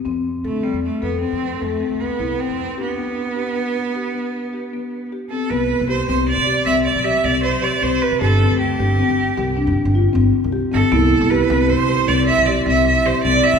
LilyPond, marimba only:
\new Staff \with { instrumentName = "Marimba" } { \time 7/4 \key g \mixolydian \tempo 4 = 155 c'4 a'8 c'4 a'8 c'4 a'8 c'4 e'8 c'4 | g'8 b4 g'8 b4 g'8 b4 g'8 b4 g'8 c'8 | b4 g'8 c'4 g'8 c'4 g'8 c'4 g'8 c'4 | g'8 c'4 g'8 c'4 g'8 d'4 f'8 c'4 g'8 c'8 |
b4 g'8 c'4 g'8 c'4 g'8 c'4 g'8 c'4 | }